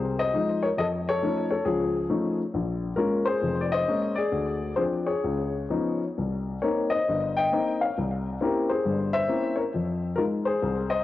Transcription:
Already playing: C2 C3 G#4 C5
0.19 C5 D#5
0.34 F3 G#3 D#4
0.62 A#4 C#5
0.77 F2 A4 D#5
1.09 A4 C#5
1.22 F3 A3 C#4 D#4
1.51 A4 C#5
1.65 C#2 F3 F4 G#4
2.10 F3 A3 C#4 D#4
2.54 A#1
2.96 G#3 A#3 C#4 F4 A#4
3.25 G#4 C5
3.42 F1 F2
3.61 D5
3.72 C5 D#5
3.87 G#3 A#3 C#4
4.16 G#4 D5
4.32 D2
4.76 F3 C4 D4 G#4 C5
5.06 G#4 C#5
5.24 C#2
5.70 F3 B3 C#4 D#4
6.18 C2
6.62 A#3 C4 D#4 A#4 C#5
6.90 C5 D#5
7.09 G1
7.36 D#5 G5
7.52 A#3 C4 D#4
7.81 C#5 F5
7.98 C2
8.41 A#3 C4 C#4 E4 G4 A#4
8.69 G#4 C5
8.85 G1 G2
9.13 C5 E5
9.28 A#3 C4 C#4 E4
9.56 A#4 C#5
9.74 F2
10.16 G#3 D#4 F4 A#4
10.45 G#4 C5
10.62 C2
10.90 C5 D#5

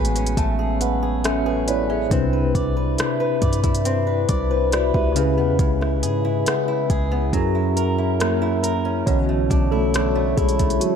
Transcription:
Already playing: A1 A2 C#3 F#3 G#3 A3 B3 C#4 G#4 B4 G#5
0.05 closed hi-hat
0.16 C#4, closed hi-hat
0.27 closed hi-hat
0.37 A1 A3 A5, kick, closed hi-hat
0.59 G#4
0.81 B4 F#5, closed hi-hat
1.03 G#4
1.24 C#4 A4 E5, cross-stick, closed hi-hat
1.46 G#4 B4
1.68 E4 B4 C#5 D5, closed hi-hat
1.90 C#4 G#4 E5
2.10 C2 C3 C4 D4 E4 B4, kick, closed hi-hat
2.14 B4
2.33 B4
2.55 C2 D5, kick, closed hi-hat
2.77 B4
2.98 E4, cross-stick, closed hi-hat
3.20 B4
3.42 G2 D5, kick, closed hi-hat
3.53 closed hi-hat
3.64 E4, kick, closed hi-hat
3.75 closed hi-hat
3.85 C4, closed hi-hat
4.07 B4
4.29 C2 D5, kick, closed hi-hat
4.51 E4 B4 C5
4.72 E4 F#4 D5, cross-stick, closed hi-hat
4.94 C#2 G4 B4 E5, kick
5.15 C#3 G#3 C#4 E4 G#4, closed hi-hat
5.19 B4
5.38 E2 B3
5.59 C#2 C#3, kick, closed hi-hat
5.81 E4, cross-stick
6.03 G#2 G#4, closed hi-hat
6.25 E4
6.46 B3, cross-stick, closed hi-hat
6.68 E4
6.90 C#2 G#4, kick, closed hi-hat
7.11 B3
7.32 F#2 F#3 C#4 E4 G#4 A#4, kick, closed hi-hat
7.37 A#4
7.55 E4
7.76 A#4, closed hi-hat
7.98 E4
8.20 A#3 C#4 A#4, cross-stick, closed hi-hat
8.42 E4
8.63 A#4, closed hi-hat
8.85 C#4
9.06 B1 B2 D3 E3 F#3 B3 C#4 E4 C#5, kick, closed hi-hat
9.29 A3
9.50 B1 D4, kick, closed hi-hat
9.71 A3 E4 A4
9.94 D4, cross-stick, closed hi-hat
10.15 A3
10.37 B1 G#3 E4 G#4, kick, closed hi-hat
10.49 closed hi-hat
10.59 A3, kick, closed hi-hat
10.70 closed hi-hat
10.80 F#3 F#4, closed hi-hat

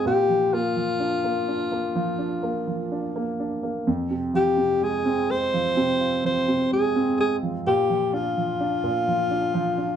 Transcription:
0.06 A#2 G4
0.29 F3
0.53 A#3 F4
0.76 F3
1.00 D4
1.24 A#3
1.48 D4
1.72 A#3
1.95 F3
2.19 D4
2.43 A#3
2.67 F3
2.92 D4
3.16 A#3
3.40 D4
3.63 A#3
3.87 F2
4.11 C3
4.34 F3 G4
4.57 C3
4.82 G#3 G#4
5.06 C4
5.30 G#3 C5
5.54 F3
5.77 C3
6.01 F4
6.24 F3 C5
6.48 C3
6.72 G#3 G#4
6.96 C4
7.19 G#3 G#4
7.43 F3
7.67 A#2 G4
7.90 F3
8.13 D4 F4
8.37 F3
8.60 D4
8.84 A#2
9.08 F3
9.31 D4
9.54 F3
9.78 D4

